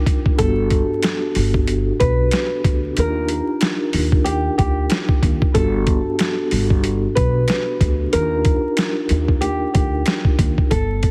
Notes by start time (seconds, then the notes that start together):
Already playing: D4 D#4 F4 G4 A#4
0.06 kick, closed hi-hat
0.26 kick
0.36 G1 B3 D4 F#4 A4, kick, closed hi-hat
0.40 G4 A4
0.70 kick, closed hi-hat
1.03 finger snap, snare, closed hi-hat
1.35 G1, open hi-hat
1.54 kick
1.67 closed hi-hat
2.00 B1 B4, kick, closed hi-hat
2.31 finger snap, snare, closed hi-hat
2.64 D2, kick, closed hi-hat
2.94 D#2 D4 D#4 F4, closed hi-hat
2.98 G4 A#4
3.28 closed hi-hat
3.61 finger snap, snare, closed hi-hat
3.93 D#2, open hi-hat
4.12 kick
4.24 G4, closed hi-hat
4.58 D2 G4, kick, closed hi-hat
4.90 finger snap, snare, closed hi-hat
5.09 kick
5.23 D#2, kick, closed hi-hat
5.42 kick
5.52 G1 B3 D4 F#4 A4, kick, closed hi-hat
5.56 G4 A4
5.87 kick, closed hi-hat
6.19 finger snap, snare, closed hi-hat
6.51 G1, open hi-hat
6.70 kick
6.84 closed hi-hat
7.15 B1 B4, kick, closed hi-hat
7.48 finger snap, snare, closed hi-hat
7.81 D2, kick, closed hi-hat
8.10 D#2 D4 D#4 F4 A#4, closed hi-hat
8.14 G4 A#4
8.45 kick, closed hi-hat
8.77 finger snap, snare, closed hi-hat
9.09 D#2, closed hi-hat
9.28 kick
9.41 G4, closed hi-hat
9.74 D2 G4, kick, closed hi-hat
10.06 finger snap, snare, closed hi-hat
10.25 kick
10.39 D#2, kick, closed hi-hat
10.58 kick
10.70 G1 A4, kick, closed hi-hat
11.03 kick, closed hi-hat